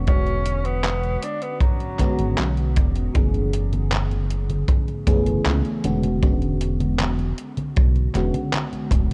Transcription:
Already playing: E1 D3 G#3 B3 C#4 F#4
0.07 D3 G#3 B3 C#4 F#4, kick, closed hi-hat
0.27 closed hi-hat
0.46 closed hi-hat
0.65 B3, closed hi-hat
0.84 clap, closed hi-hat
1.03 closed hi-hat
1.23 D4, closed hi-hat
1.42 B3, closed hi-hat
1.60 F#3, kick, closed hi-hat
1.80 closed hi-hat
1.98 D3 G#3 B3 C#4 F#4, kick, clap, closed hi-hat
2.19 G#1, closed hi-hat
2.38 B1, clap, closed hi-hat
2.57 closed hi-hat
2.76 E1, kick, closed hi-hat
2.96 closed hi-hat
3.14 F#1 E3 A3 B3 C#4 G#4, kick, closed hi-hat, high conga
3.34 closed hi-hat, high conga
3.53 closed hi-hat
3.73 closed hi-hat, high conga
3.92 clap, closed hi-hat, high conga
4.11 closed hi-hat, high conga
4.30 closed hi-hat
4.50 closed hi-hat, high conga
4.68 kick, closed hi-hat, high conga
4.88 closed hi-hat, high conga
5.07 F#1 E3 A3 B3 C#4 G#4, kick, closed hi-hat
5.26 closed hi-hat, high conga
5.46 C#2, clap, closed hi-hat, high conga
5.65 closed hi-hat, high conga
5.84 E1 D3 G#3 B3 C#4 F#4, closed hi-hat
6.03 closed hi-hat, high conga
6.22 D3 G#3 B3 C#4 F#4, kick, closed hi-hat, high conga
6.42 closed hi-hat, high conga
6.61 closed hi-hat
6.80 closed hi-hat, high conga
6.99 clap, closed hi-hat, high conga
7.19 closed hi-hat, high conga
7.38 closed hi-hat
7.57 closed hi-hat, high conga
7.76 B1, kick, closed hi-hat, high conga
7.96 closed hi-hat, high conga
8.14 E1 D3 G#3 B3 C#4 F#4, clap, closed hi-hat
8.34 closed hi-hat, high conga
8.53 clap, closed hi-hat, high conga
8.73 closed hi-hat, high conga
8.91 D1, kick, closed hi-hat

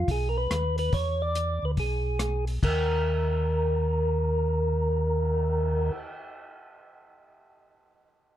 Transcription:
Already playing: F4
0.08 B1 G#4, kick, open hi-hat
0.29 A#4
0.38 B4
0.50 D#2, cross-stick, closed hi-hat
0.78 B4, open hi-hat
0.93 E2 C#5, kick, open hi-hat
1.22 D5
1.35 closed hi-hat
1.62 D2 B4
1.77 B1 G#4, kick, open hi-hat
2.19 cross-stick, closed hi-hat
2.47 open hi-hat
2.62 D#2 A#4, kick, crash
2.91 cymbal swell

